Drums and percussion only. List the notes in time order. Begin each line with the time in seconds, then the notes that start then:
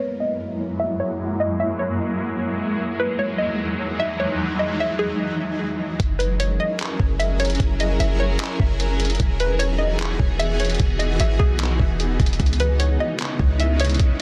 6.00 kick, closed hi-hat
6.20 closed hi-hat
6.40 closed hi-hat
6.80 clap, closed hi-hat
7.00 kick
7.20 closed hi-hat
7.40 closed hi-hat
7.45 closed hi-hat
7.50 closed hi-hat
7.55 closed hi-hat
7.60 kick, closed hi-hat
7.80 closed hi-hat
8.00 closed hi-hat
8.40 clap, closed hi-hat
8.60 kick
8.80 closed hi-hat
9.00 closed hi-hat
9.05 closed hi-hat
9.10 closed hi-hat
9.15 closed hi-hat
9.20 kick, closed hi-hat
9.40 closed hi-hat
9.60 closed hi-hat
10.00 clap, closed hi-hat
10.20 kick
10.40 closed hi-hat
10.60 closed hi-hat
10.65 closed hi-hat
10.70 closed hi-hat
10.75 closed hi-hat
10.80 kick, closed hi-hat
11.00 closed hi-hat
11.20 closed hi-hat
11.40 kick
11.60 clap, closed hi-hat
11.80 kick
12.00 closed hi-hat
12.20 kick, closed hi-hat
12.26 closed hi-hat
12.33 closed hi-hat
12.40 kick, closed hi-hat
12.46 closed hi-hat
12.53 closed hi-hat
12.60 closed hi-hat
12.80 closed hi-hat
13.19 clap, closed hi-hat
13.39 kick
13.60 closed hi-hat
13.80 closed hi-hat
13.85 closed hi-hat
13.90 closed hi-hat
13.94 closed hi-hat
14.00 kick, closed hi-hat